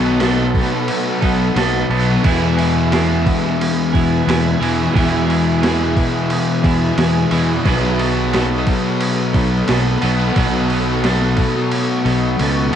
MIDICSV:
0, 0, Header, 1, 7, 480
1, 0, Start_track
1, 0, Key_signature, 4, "major"
1, 0, Tempo, 677201
1, 1588, Time_signature, 4, 2, 24, 8
1, 9041, End_track
2, 0, Start_track
2, 0, Title_t, "Ambient pad"
2, 0, Program_c, 0, 92
2, 0, Note_on_c, 0, 69, 82
2, 0, Note_on_c, 0, 78, 74
2, 0, Note_on_c, 0, 83, 70
2, 0, Note_on_c, 0, 87, 83
2, 1560, Note_off_c, 0, 78, 0
2, 1560, Note_off_c, 0, 87, 0
2, 1562, Note_off_c, 0, 69, 0
2, 1569, Note_off_c, 0, 83, 0
2, 1589, Note_on_c, 0, 68, 80
2, 1589, Note_on_c, 0, 76, 71
2, 1591, Note_on_c, 0, 87, 81
2, 1593, Note_on_c, 0, 83, 67
2, 5400, Note_off_c, 0, 68, 0
2, 5400, Note_off_c, 0, 76, 0
2, 5420, Note_on_c, 0, 78, 72
2, 5423, Note_on_c, 0, 69, 78
2, 7321, Note_off_c, 0, 83, 0
2, 7346, Note_on_c, 0, 85, 74
2, 9041, Note_off_c, 0, 69, 0
2, 9041, Note_off_c, 0, 78, 0
2, 9041, Note_off_c, 0, 85, 0
2, 9041, Note_off_c, 0, 87, 0
2, 9041, End_track
3, 0, Start_track
3, 0, Title_t, "Overdriven electric guitar"
3, 0, Program_c, 1, 29
3, 0, Note_on_c, 1, 47, 97
3, 0, Note_on_c, 1, 51, 93
3, 0, Note_on_c, 1, 54, 62
3, 0, Note_on_c, 1, 59, 60
3, 0, Note_on_c, 1, 63, 60
3, 0, Note_on_c, 1, 69, 71
3, 131, Note_off_c, 1, 54, 0
3, 138, Note_off_c, 1, 47, 0
3, 140, Note_on_c, 1, 54, 81
3, 141, Note_off_c, 1, 51, 0
3, 142, Note_off_c, 1, 59, 0
3, 145, Note_on_c, 1, 59, 85
3, 152, Note_off_c, 1, 63, 0
3, 152, Note_off_c, 1, 69, 0
3, 155, Note_on_c, 1, 63, 88
3, 161, Note_on_c, 1, 69, 88
3, 850, Note_off_c, 1, 69, 0
3, 858, Note_on_c, 1, 69, 75
3, 864, Note_off_c, 1, 63, 0
3, 867, Note_on_c, 1, 63, 66
3, 871, Note_off_c, 1, 59, 0
3, 872, Note_off_c, 1, 54, 0
3, 873, Note_on_c, 1, 59, 64
3, 880, Note_on_c, 1, 54, 62
3, 1088, Note_off_c, 1, 54, 0
3, 1097, Note_on_c, 1, 54, 70
3, 1102, Note_off_c, 1, 59, 0
3, 1105, Note_on_c, 1, 59, 73
3, 1107, Note_off_c, 1, 69, 0
3, 1110, Note_off_c, 1, 63, 0
3, 1113, Note_on_c, 1, 63, 82
3, 1115, Note_on_c, 1, 69, 87
3, 1336, Note_off_c, 1, 69, 0
3, 1345, Note_on_c, 1, 69, 68
3, 1349, Note_off_c, 1, 63, 0
3, 1352, Note_on_c, 1, 63, 70
3, 1354, Note_off_c, 1, 54, 0
3, 1355, Note_off_c, 1, 59, 0
3, 1358, Note_on_c, 1, 59, 67
3, 1363, Note_on_c, 1, 54, 65
3, 1572, Note_off_c, 1, 69, 0
3, 1581, Note_off_c, 1, 54, 0
3, 1583, Note_on_c, 1, 52, 96
3, 1588, Note_off_c, 1, 59, 0
3, 1589, Note_on_c, 1, 56, 97
3, 1591, Note_on_c, 1, 59, 103
3, 1594, Note_off_c, 1, 63, 0
3, 1597, Note_on_c, 1, 64, 102
3, 1602, Note_on_c, 1, 68, 121
3, 1816, Note_off_c, 1, 68, 0
3, 1819, Note_on_c, 1, 68, 65
3, 1832, Note_off_c, 1, 64, 0
3, 1834, Note_on_c, 1, 64, 66
3, 1842, Note_off_c, 1, 59, 0
3, 1845, Note_on_c, 1, 59, 53
3, 2061, Note_off_c, 1, 56, 0
3, 2064, Note_on_c, 1, 56, 79
3, 2068, Note_off_c, 1, 59, 0
3, 2070, Note_on_c, 1, 59, 72
3, 2074, Note_off_c, 1, 64, 0
3, 2077, Note_on_c, 1, 64, 82
3, 2081, Note_off_c, 1, 68, 0
3, 2083, Note_on_c, 1, 68, 82
3, 2775, Note_off_c, 1, 68, 0
3, 2784, Note_on_c, 1, 68, 80
3, 2791, Note_off_c, 1, 64, 0
3, 2800, Note_on_c, 1, 64, 74
3, 2801, Note_off_c, 1, 59, 0
3, 2804, Note_on_c, 1, 59, 62
3, 3011, Note_off_c, 1, 56, 0
3, 3020, Note_on_c, 1, 56, 69
3, 3024, Note_off_c, 1, 59, 0
3, 3027, Note_off_c, 1, 64, 0
3, 3027, Note_on_c, 1, 59, 82
3, 3031, Note_off_c, 1, 68, 0
3, 3036, Note_on_c, 1, 64, 89
3, 3040, Note_on_c, 1, 68, 84
3, 3248, Note_off_c, 1, 68, 0
3, 3256, Note_off_c, 1, 64, 0
3, 3257, Note_on_c, 1, 68, 76
3, 3265, Note_on_c, 1, 64, 71
3, 3274, Note_off_c, 1, 59, 0
3, 3277, Note_on_c, 1, 59, 59
3, 3489, Note_off_c, 1, 56, 0
3, 3491, Note_off_c, 1, 52, 0
3, 3494, Note_on_c, 1, 52, 103
3, 3497, Note_on_c, 1, 56, 97
3, 3499, Note_off_c, 1, 59, 0
3, 3501, Note_on_c, 1, 59, 100
3, 3502, Note_off_c, 1, 64, 0
3, 3503, Note_off_c, 1, 68, 0
3, 3510, Note_on_c, 1, 64, 112
3, 3511, Note_on_c, 1, 68, 110
3, 3726, Note_off_c, 1, 68, 0
3, 3735, Note_on_c, 1, 68, 72
3, 3738, Note_off_c, 1, 64, 0
3, 3746, Note_on_c, 1, 64, 64
3, 3752, Note_off_c, 1, 59, 0
3, 3754, Note_on_c, 1, 59, 57
3, 3963, Note_off_c, 1, 56, 0
3, 3972, Note_on_c, 1, 56, 74
3, 3977, Note_off_c, 1, 59, 0
3, 3980, Note_off_c, 1, 64, 0
3, 3980, Note_on_c, 1, 59, 78
3, 3981, Note_off_c, 1, 52, 0
3, 3982, Note_off_c, 1, 68, 0
3, 3989, Note_on_c, 1, 64, 85
3, 3991, Note_on_c, 1, 68, 95
3, 4692, Note_off_c, 1, 68, 0
3, 4700, Note_on_c, 1, 68, 73
3, 4703, Note_off_c, 1, 64, 0
3, 4712, Note_on_c, 1, 64, 73
3, 4715, Note_off_c, 1, 59, 0
3, 4717, Note_on_c, 1, 59, 63
3, 4928, Note_off_c, 1, 56, 0
3, 4937, Note_on_c, 1, 56, 70
3, 4943, Note_off_c, 1, 59, 0
3, 4943, Note_off_c, 1, 64, 0
3, 4946, Note_on_c, 1, 59, 86
3, 4947, Note_off_c, 1, 68, 0
3, 4952, Note_on_c, 1, 64, 80
3, 4955, Note_on_c, 1, 68, 87
3, 5171, Note_off_c, 1, 68, 0
3, 5180, Note_on_c, 1, 68, 73
3, 5182, Note_off_c, 1, 64, 0
3, 5190, Note_on_c, 1, 64, 71
3, 5196, Note_off_c, 1, 59, 0
3, 5199, Note_on_c, 1, 59, 62
3, 5408, Note_off_c, 1, 56, 0
3, 5410, Note_off_c, 1, 68, 0
3, 5415, Note_off_c, 1, 64, 0
3, 5416, Note_on_c, 1, 47, 98
3, 5421, Note_on_c, 1, 51, 108
3, 5424, Note_off_c, 1, 59, 0
3, 5426, Note_on_c, 1, 54, 113
3, 5427, Note_on_c, 1, 59, 113
3, 5432, Note_on_c, 1, 63, 119
3, 5436, Note_on_c, 1, 69, 111
3, 5659, Note_off_c, 1, 69, 0
3, 5662, Note_on_c, 1, 69, 69
3, 5666, Note_off_c, 1, 63, 0
3, 5669, Note_on_c, 1, 63, 71
3, 5670, Note_off_c, 1, 59, 0
3, 5673, Note_on_c, 1, 59, 63
3, 5679, Note_off_c, 1, 54, 0
3, 5682, Note_on_c, 1, 54, 63
3, 5897, Note_off_c, 1, 54, 0
3, 5900, Note_on_c, 1, 54, 86
3, 5903, Note_off_c, 1, 59, 0
3, 5904, Note_off_c, 1, 51, 0
3, 5906, Note_on_c, 1, 59, 78
3, 5911, Note_off_c, 1, 63, 0
3, 5914, Note_on_c, 1, 63, 86
3, 5916, Note_off_c, 1, 69, 0
3, 5919, Note_on_c, 1, 69, 87
3, 5941, Note_off_c, 1, 47, 0
3, 6606, Note_off_c, 1, 69, 0
3, 6615, Note_on_c, 1, 69, 71
3, 6619, Note_off_c, 1, 63, 0
3, 6622, Note_on_c, 1, 63, 76
3, 6626, Note_off_c, 1, 54, 0
3, 6626, Note_off_c, 1, 59, 0
3, 6629, Note_on_c, 1, 59, 68
3, 6635, Note_on_c, 1, 54, 61
3, 6853, Note_off_c, 1, 54, 0
3, 6861, Note_on_c, 1, 54, 77
3, 6866, Note_off_c, 1, 59, 0
3, 6869, Note_on_c, 1, 59, 75
3, 6871, Note_off_c, 1, 63, 0
3, 6872, Note_off_c, 1, 69, 0
3, 6874, Note_on_c, 1, 63, 76
3, 6881, Note_on_c, 1, 69, 80
3, 7087, Note_off_c, 1, 69, 0
3, 7096, Note_on_c, 1, 69, 75
3, 7099, Note_off_c, 1, 63, 0
3, 7102, Note_on_c, 1, 63, 76
3, 7108, Note_off_c, 1, 54, 0
3, 7109, Note_off_c, 1, 59, 0
3, 7112, Note_on_c, 1, 59, 67
3, 7116, Note_on_c, 1, 54, 67
3, 7338, Note_off_c, 1, 54, 0
3, 7340, Note_on_c, 1, 47, 108
3, 7343, Note_off_c, 1, 59, 0
3, 7344, Note_on_c, 1, 51, 103
3, 7347, Note_off_c, 1, 63, 0
3, 7347, Note_on_c, 1, 54, 110
3, 7349, Note_off_c, 1, 69, 0
3, 7351, Note_on_c, 1, 59, 104
3, 7356, Note_on_c, 1, 63, 110
3, 7357, Note_on_c, 1, 69, 116
3, 7572, Note_off_c, 1, 69, 0
3, 7580, Note_on_c, 1, 69, 67
3, 7581, Note_off_c, 1, 63, 0
3, 7589, Note_on_c, 1, 63, 67
3, 7590, Note_off_c, 1, 59, 0
3, 7593, Note_off_c, 1, 54, 0
3, 7598, Note_on_c, 1, 59, 67
3, 7601, Note_on_c, 1, 54, 56
3, 7809, Note_off_c, 1, 54, 0
3, 7817, Note_on_c, 1, 54, 82
3, 7819, Note_off_c, 1, 59, 0
3, 7823, Note_off_c, 1, 47, 0
3, 7824, Note_off_c, 1, 63, 0
3, 7825, Note_off_c, 1, 51, 0
3, 7827, Note_on_c, 1, 59, 74
3, 7830, Note_off_c, 1, 69, 0
3, 7833, Note_on_c, 1, 63, 86
3, 7838, Note_on_c, 1, 69, 91
3, 8530, Note_off_c, 1, 69, 0
3, 8538, Note_off_c, 1, 63, 0
3, 8538, Note_on_c, 1, 69, 82
3, 8544, Note_off_c, 1, 59, 0
3, 8547, Note_on_c, 1, 63, 71
3, 8550, Note_off_c, 1, 54, 0
3, 8552, Note_on_c, 1, 59, 68
3, 8558, Note_on_c, 1, 54, 68
3, 8773, Note_off_c, 1, 54, 0
3, 8782, Note_on_c, 1, 54, 71
3, 8783, Note_off_c, 1, 59, 0
3, 8786, Note_off_c, 1, 63, 0
3, 8791, Note_on_c, 1, 59, 79
3, 8794, Note_off_c, 1, 69, 0
3, 8795, Note_on_c, 1, 63, 81
3, 8803, Note_on_c, 1, 69, 79
3, 9007, Note_off_c, 1, 69, 0
3, 9016, Note_off_c, 1, 63, 0
3, 9016, Note_on_c, 1, 69, 68
3, 9020, Note_off_c, 1, 59, 0
3, 9027, Note_off_c, 1, 54, 0
3, 9041, Note_off_c, 1, 69, 0
3, 9041, End_track
4, 0, Start_track
4, 0, Title_t, "Distorted electric guitar"
4, 0, Program_c, 2, 30
4, 0, Note_on_c, 2, 47, 94
4, 0, Note_on_c, 2, 54, 114
4, 0, Note_on_c, 2, 59, 104
4, 132, Note_off_c, 2, 47, 0
4, 141, Note_off_c, 2, 54, 0
4, 141, Note_on_c, 2, 47, 74
4, 149, Note_on_c, 2, 54, 92
4, 151, Note_off_c, 2, 59, 0
4, 154, Note_on_c, 2, 59, 89
4, 385, Note_off_c, 2, 59, 0
4, 387, Note_on_c, 2, 59, 74
4, 391, Note_off_c, 2, 54, 0
4, 399, Note_on_c, 2, 54, 57
4, 625, Note_off_c, 2, 47, 0
4, 862, Note_off_c, 2, 59, 0
4, 865, Note_on_c, 2, 59, 66
4, 869, Note_off_c, 2, 54, 0
4, 878, Note_on_c, 2, 54, 60
4, 1107, Note_off_c, 2, 54, 0
4, 1108, Note_on_c, 2, 47, 73
4, 1115, Note_on_c, 2, 54, 74
4, 1118, Note_off_c, 2, 59, 0
4, 1121, Note_on_c, 2, 59, 81
4, 1574, Note_off_c, 2, 47, 0
4, 1578, Note_off_c, 2, 54, 0
4, 1582, Note_on_c, 2, 40, 100
4, 1589, Note_on_c, 2, 47, 106
4, 1597, Note_on_c, 2, 52, 108
4, 2061, Note_off_c, 2, 40, 0
4, 2064, Note_on_c, 2, 40, 72
4, 2067, Note_off_c, 2, 47, 0
4, 2076, Note_on_c, 2, 47, 83
4, 2077, Note_off_c, 2, 52, 0
4, 2079, Note_on_c, 2, 52, 85
4, 2304, Note_off_c, 2, 52, 0
4, 2307, Note_on_c, 2, 52, 69
4, 2312, Note_off_c, 2, 47, 0
4, 2320, Note_on_c, 2, 47, 62
4, 2775, Note_off_c, 2, 52, 0
4, 2783, Note_on_c, 2, 52, 66
4, 2791, Note_off_c, 2, 47, 0
4, 2800, Note_on_c, 2, 47, 62
4, 3023, Note_off_c, 2, 40, 0
4, 3024, Note_off_c, 2, 47, 0
4, 3026, Note_on_c, 2, 40, 71
4, 3031, Note_off_c, 2, 52, 0
4, 3033, Note_on_c, 2, 47, 74
4, 3040, Note_on_c, 2, 52, 77
4, 3497, Note_off_c, 2, 40, 0
4, 3504, Note_off_c, 2, 47, 0
4, 3505, Note_on_c, 2, 40, 92
4, 3513, Note_on_c, 2, 47, 100
4, 3514, Note_off_c, 2, 52, 0
4, 3523, Note_on_c, 2, 52, 103
4, 3602, Note_off_c, 2, 59, 0
4, 3976, Note_off_c, 2, 40, 0
4, 3982, Note_off_c, 2, 47, 0
4, 3985, Note_on_c, 2, 40, 69
4, 3989, Note_off_c, 2, 52, 0
4, 3990, Note_on_c, 2, 47, 84
4, 3997, Note_on_c, 2, 52, 82
4, 4220, Note_off_c, 2, 52, 0
4, 4229, Note_on_c, 2, 52, 69
4, 4231, Note_off_c, 2, 47, 0
4, 4239, Note_on_c, 2, 47, 65
4, 4466, Note_off_c, 2, 40, 0
4, 4698, Note_off_c, 2, 52, 0
4, 4707, Note_on_c, 2, 52, 84
4, 4712, Note_off_c, 2, 47, 0
4, 4720, Note_on_c, 2, 47, 65
4, 4944, Note_off_c, 2, 47, 0
4, 4946, Note_on_c, 2, 40, 72
4, 4950, Note_off_c, 2, 52, 0
4, 4952, Note_on_c, 2, 47, 84
4, 4958, Note_on_c, 2, 52, 87
4, 5412, Note_off_c, 2, 40, 0
4, 5416, Note_off_c, 2, 47, 0
4, 5419, Note_off_c, 2, 52, 0
4, 5426, Note_on_c, 2, 47, 105
4, 5433, Note_on_c, 2, 54, 109
4, 5439, Note_on_c, 2, 59, 108
4, 5903, Note_off_c, 2, 47, 0
4, 5906, Note_on_c, 2, 47, 78
4, 5912, Note_off_c, 2, 54, 0
4, 5914, Note_off_c, 2, 59, 0
4, 5915, Note_on_c, 2, 54, 79
4, 5917, Note_on_c, 2, 59, 81
4, 6142, Note_off_c, 2, 59, 0
4, 6145, Note_on_c, 2, 59, 77
4, 6156, Note_off_c, 2, 54, 0
4, 6159, Note_on_c, 2, 54, 65
4, 6622, Note_off_c, 2, 59, 0
4, 6625, Note_on_c, 2, 59, 73
4, 6628, Note_off_c, 2, 54, 0
4, 6636, Note_on_c, 2, 54, 60
4, 6855, Note_off_c, 2, 47, 0
4, 6855, Note_off_c, 2, 54, 0
4, 6858, Note_on_c, 2, 47, 72
4, 6864, Note_on_c, 2, 54, 71
4, 6869, Note_off_c, 2, 59, 0
4, 6871, Note_on_c, 2, 59, 87
4, 7336, Note_off_c, 2, 47, 0
4, 7343, Note_off_c, 2, 54, 0
4, 7345, Note_on_c, 2, 47, 97
4, 7348, Note_off_c, 2, 59, 0
4, 7352, Note_on_c, 2, 54, 102
4, 7357, Note_on_c, 2, 59, 110
4, 7816, Note_off_c, 2, 47, 0
4, 7821, Note_off_c, 2, 54, 0
4, 7824, Note_on_c, 2, 47, 79
4, 7829, Note_off_c, 2, 59, 0
4, 7830, Note_on_c, 2, 54, 85
4, 7837, Note_on_c, 2, 59, 82
4, 8055, Note_off_c, 2, 59, 0
4, 8063, Note_on_c, 2, 59, 72
4, 8067, Note_off_c, 2, 54, 0
4, 8076, Note_on_c, 2, 54, 60
4, 8305, Note_off_c, 2, 47, 0
4, 8531, Note_off_c, 2, 59, 0
4, 8540, Note_on_c, 2, 59, 67
4, 8548, Note_off_c, 2, 54, 0
4, 8556, Note_on_c, 2, 54, 58
4, 8785, Note_on_c, 2, 47, 75
4, 8786, Note_off_c, 2, 54, 0
4, 8789, Note_off_c, 2, 59, 0
4, 8795, Note_on_c, 2, 54, 73
4, 8797, Note_on_c, 2, 59, 81
4, 9041, Note_off_c, 2, 47, 0
4, 9041, Note_off_c, 2, 54, 0
4, 9041, Note_off_c, 2, 59, 0
4, 9041, End_track
5, 0, Start_track
5, 0, Title_t, "Overdriven electric guitar"
5, 0, Program_c, 3, 29
5, 1349, Note_on_c, 3, 59, 91
5, 1363, Note_on_c, 3, 54, 71
5, 1374, Note_on_c, 3, 47, 71
5, 1581, Note_off_c, 3, 54, 0
5, 1587, Note_off_c, 3, 47, 0
5, 3265, Note_on_c, 3, 52, 92
5, 3281, Note_on_c, 3, 47, 79
5, 3292, Note_on_c, 3, 40, 78
5, 3492, Note_off_c, 3, 40, 0
5, 3492, Note_off_c, 3, 52, 0
5, 3500, Note_off_c, 3, 47, 0
5, 3829, Note_off_c, 3, 59, 0
5, 5186, Note_on_c, 3, 52, 91
5, 5199, Note_on_c, 3, 47, 77
5, 5211, Note_on_c, 3, 40, 78
5, 5412, Note_off_c, 3, 52, 0
5, 5415, Note_off_c, 3, 47, 0
5, 5425, Note_off_c, 3, 40, 0
5, 7102, Note_on_c, 3, 59, 96
5, 7118, Note_on_c, 3, 54, 75
5, 7130, Note_on_c, 3, 47, 79
5, 7329, Note_off_c, 3, 47, 0
5, 7338, Note_off_c, 3, 54, 0
5, 7362, Note_off_c, 3, 59, 0
5, 9041, End_track
6, 0, Start_track
6, 0, Title_t, "Fingered electric bass"
6, 0, Program_c, 4, 33
6, 0, Note_on_c, 4, 35, 112
6, 415, Note_off_c, 4, 35, 0
6, 867, Note_on_c, 4, 35, 90
6, 1055, Note_off_c, 4, 35, 0
6, 1103, Note_on_c, 4, 35, 99
6, 1293, Note_off_c, 4, 35, 0
6, 1342, Note_on_c, 4, 35, 93
6, 1532, Note_off_c, 4, 35, 0
6, 1588, Note_on_c, 4, 40, 111
6, 2338, Note_off_c, 4, 40, 0
6, 2794, Note_on_c, 4, 40, 91
6, 2980, Note_off_c, 4, 40, 0
6, 3027, Note_on_c, 4, 40, 110
6, 3215, Note_off_c, 4, 40, 0
6, 3264, Note_on_c, 4, 40, 93
6, 3453, Note_off_c, 4, 40, 0
6, 3512, Note_on_c, 4, 40, 118
6, 4260, Note_off_c, 4, 40, 0
6, 4705, Note_on_c, 4, 40, 95
6, 4894, Note_off_c, 4, 40, 0
6, 4945, Note_on_c, 4, 40, 107
6, 5133, Note_off_c, 4, 40, 0
6, 5184, Note_on_c, 4, 40, 96
6, 5373, Note_off_c, 4, 40, 0
6, 5427, Note_on_c, 4, 35, 114
6, 6177, Note_off_c, 4, 35, 0
6, 6622, Note_on_c, 4, 35, 91
6, 6811, Note_off_c, 4, 35, 0
6, 6869, Note_on_c, 4, 35, 100
6, 7055, Note_off_c, 4, 35, 0
6, 7108, Note_on_c, 4, 35, 95
6, 7295, Note_off_c, 4, 35, 0
6, 7343, Note_on_c, 4, 35, 110
6, 8094, Note_off_c, 4, 35, 0
6, 8543, Note_on_c, 4, 35, 89
6, 8761, Note_off_c, 4, 35, 0
6, 8785, Note_on_c, 4, 37, 86
6, 9001, Note_off_c, 4, 37, 0
6, 9041, End_track
7, 0, Start_track
7, 0, Title_t, "Drums"
7, 144, Note_on_c, 9, 49, 77
7, 151, Note_on_c, 9, 38, 112
7, 215, Note_off_c, 9, 49, 0
7, 222, Note_off_c, 9, 38, 0
7, 387, Note_on_c, 9, 36, 97
7, 390, Note_on_c, 9, 49, 72
7, 457, Note_off_c, 9, 36, 0
7, 461, Note_off_c, 9, 49, 0
7, 513, Note_on_c, 9, 38, 33
7, 584, Note_off_c, 9, 38, 0
7, 624, Note_on_c, 9, 49, 88
7, 695, Note_off_c, 9, 49, 0
7, 867, Note_on_c, 9, 36, 92
7, 868, Note_on_c, 9, 49, 67
7, 938, Note_off_c, 9, 36, 0
7, 938, Note_off_c, 9, 49, 0
7, 1108, Note_on_c, 9, 49, 97
7, 1115, Note_on_c, 9, 38, 119
7, 1179, Note_off_c, 9, 49, 0
7, 1186, Note_off_c, 9, 38, 0
7, 1349, Note_on_c, 9, 49, 74
7, 1420, Note_off_c, 9, 49, 0
7, 1588, Note_on_c, 9, 49, 92
7, 1589, Note_on_c, 9, 36, 113
7, 1659, Note_off_c, 9, 49, 0
7, 1660, Note_off_c, 9, 36, 0
7, 1832, Note_on_c, 9, 49, 75
7, 1903, Note_off_c, 9, 49, 0
7, 2070, Note_on_c, 9, 49, 86
7, 2077, Note_on_c, 9, 38, 100
7, 2141, Note_off_c, 9, 49, 0
7, 2148, Note_off_c, 9, 38, 0
7, 2312, Note_on_c, 9, 36, 90
7, 2315, Note_on_c, 9, 49, 72
7, 2383, Note_off_c, 9, 36, 0
7, 2385, Note_off_c, 9, 49, 0
7, 2447, Note_on_c, 9, 38, 29
7, 2518, Note_off_c, 9, 38, 0
7, 2561, Note_on_c, 9, 49, 98
7, 2632, Note_off_c, 9, 49, 0
7, 2793, Note_on_c, 9, 36, 86
7, 2798, Note_on_c, 9, 49, 61
7, 2864, Note_off_c, 9, 36, 0
7, 2869, Note_off_c, 9, 49, 0
7, 3038, Note_on_c, 9, 49, 92
7, 3045, Note_on_c, 9, 38, 126
7, 3109, Note_off_c, 9, 49, 0
7, 3116, Note_off_c, 9, 38, 0
7, 3279, Note_on_c, 9, 49, 70
7, 3350, Note_off_c, 9, 49, 0
7, 3513, Note_on_c, 9, 36, 113
7, 3520, Note_on_c, 9, 49, 87
7, 3584, Note_off_c, 9, 36, 0
7, 3590, Note_off_c, 9, 49, 0
7, 3757, Note_on_c, 9, 49, 62
7, 3827, Note_off_c, 9, 49, 0
7, 3992, Note_on_c, 9, 49, 85
7, 3999, Note_on_c, 9, 38, 118
7, 4063, Note_off_c, 9, 49, 0
7, 4070, Note_off_c, 9, 38, 0
7, 4119, Note_on_c, 9, 38, 33
7, 4190, Note_off_c, 9, 38, 0
7, 4229, Note_on_c, 9, 36, 94
7, 4230, Note_on_c, 9, 49, 67
7, 4299, Note_off_c, 9, 36, 0
7, 4301, Note_off_c, 9, 49, 0
7, 4466, Note_on_c, 9, 49, 91
7, 4537, Note_off_c, 9, 49, 0
7, 4707, Note_on_c, 9, 36, 86
7, 4709, Note_on_c, 9, 49, 68
7, 4778, Note_off_c, 9, 36, 0
7, 4780, Note_off_c, 9, 49, 0
7, 4946, Note_on_c, 9, 49, 96
7, 4954, Note_on_c, 9, 38, 117
7, 5017, Note_off_c, 9, 49, 0
7, 5024, Note_off_c, 9, 38, 0
7, 5183, Note_on_c, 9, 49, 70
7, 5254, Note_off_c, 9, 49, 0
7, 5426, Note_on_c, 9, 36, 122
7, 5427, Note_on_c, 9, 49, 92
7, 5497, Note_off_c, 9, 36, 0
7, 5498, Note_off_c, 9, 49, 0
7, 5666, Note_on_c, 9, 49, 73
7, 5737, Note_off_c, 9, 49, 0
7, 5907, Note_on_c, 9, 49, 85
7, 5915, Note_on_c, 9, 38, 109
7, 5978, Note_off_c, 9, 49, 0
7, 5985, Note_off_c, 9, 38, 0
7, 6033, Note_on_c, 9, 38, 32
7, 6104, Note_off_c, 9, 38, 0
7, 6143, Note_on_c, 9, 49, 73
7, 6146, Note_on_c, 9, 36, 91
7, 6214, Note_off_c, 9, 49, 0
7, 6217, Note_off_c, 9, 36, 0
7, 6384, Note_on_c, 9, 49, 103
7, 6454, Note_off_c, 9, 49, 0
7, 6623, Note_on_c, 9, 49, 71
7, 6624, Note_on_c, 9, 36, 88
7, 6694, Note_off_c, 9, 36, 0
7, 6694, Note_off_c, 9, 49, 0
7, 6859, Note_on_c, 9, 49, 98
7, 6866, Note_on_c, 9, 38, 126
7, 6930, Note_off_c, 9, 49, 0
7, 6937, Note_off_c, 9, 38, 0
7, 7100, Note_on_c, 9, 49, 71
7, 7171, Note_off_c, 9, 49, 0
7, 7343, Note_on_c, 9, 49, 89
7, 7344, Note_on_c, 9, 36, 116
7, 7414, Note_off_c, 9, 49, 0
7, 7415, Note_off_c, 9, 36, 0
7, 7583, Note_on_c, 9, 49, 63
7, 7654, Note_off_c, 9, 49, 0
7, 7823, Note_on_c, 9, 49, 85
7, 7830, Note_on_c, 9, 38, 104
7, 7894, Note_off_c, 9, 49, 0
7, 7901, Note_off_c, 9, 38, 0
7, 7949, Note_on_c, 9, 38, 29
7, 8020, Note_off_c, 9, 38, 0
7, 8057, Note_on_c, 9, 49, 66
7, 8063, Note_on_c, 9, 36, 92
7, 8128, Note_off_c, 9, 49, 0
7, 8133, Note_off_c, 9, 36, 0
7, 8189, Note_on_c, 9, 38, 31
7, 8260, Note_off_c, 9, 38, 0
7, 8304, Note_on_c, 9, 49, 88
7, 8375, Note_off_c, 9, 49, 0
7, 8546, Note_on_c, 9, 49, 62
7, 8617, Note_off_c, 9, 49, 0
7, 8784, Note_on_c, 9, 49, 93
7, 8855, Note_off_c, 9, 49, 0
7, 9041, End_track
0, 0, End_of_file